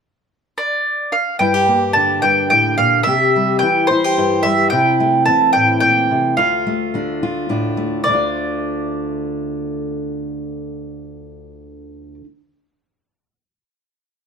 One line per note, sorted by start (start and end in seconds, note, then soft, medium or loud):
0.58 1.15 D5 medium
1.12 1.39 F5 medium
1.39 2.22 G2 soft
1.39 1.54 E4 soft
1.39 1.93 G5 medium
1.54 3.06 G4 soft
1.68 3.03 A#3 soft
1.93 3.06 D3 soft
1.93 3.03 D4 soft
1.93 2.22 A5 medium
2.22 2.51 G2 soft
2.22 2.49 G5 medium
2.50 2.78 A2 soft
2.50 2.76 G5 medium
2.78 3.06 A#2 soft
2.78 3.03 F5 medium
3.03 3.62 C3 soft
3.03 3.90 G4 soft
3.03 3.59 E5 medium
3.36 4.44 G3 soft
3.59 4.69 E3 soft
3.59 3.90 E4 soft
3.59 3.86 G5 medium
3.87 4.04 E4 soft
3.87 4.45 C5 medium
4.04 4.73 G4 soft
4.17 4.69 G2 soft
4.17 4.69 E4 soft
4.43 4.72 G3 soft
4.43 4.69 E5 medium
4.70 5.27 C3 medium
4.70 6.38 E4 medium
4.70 5.25 G5 medium
5.00 6.66 A3 soft
5.26 6.34 E3 soft
5.26 6.35 C4 soft
5.26 5.52 A5 medium
5.53 5.83 A2 medium
5.53 5.79 G5 medium
5.80 6.11 A#2 soft
5.80 6.36 G5 medium
6.11 6.38 C3 soft
6.37 8.04 D2 medium
6.37 7.21 F4 medium
6.37 7.71 F5 medium
6.67 7.76 A3 soft
6.94 8.06 D3 soft
6.94 7.48 D4 soft
7.23 8.01 F4 medium
7.49 8.04 A2 soft
7.49 8.00 D4 soft
7.77 8.00 A3 soft
8.04 12.20 D2 soft
8.04 12.22 D3 soft
8.04 12.14 D5 medium
8.09 12.24 A3 soft
8.09 12.26 D4 soft
8.13 12.28 F4 soft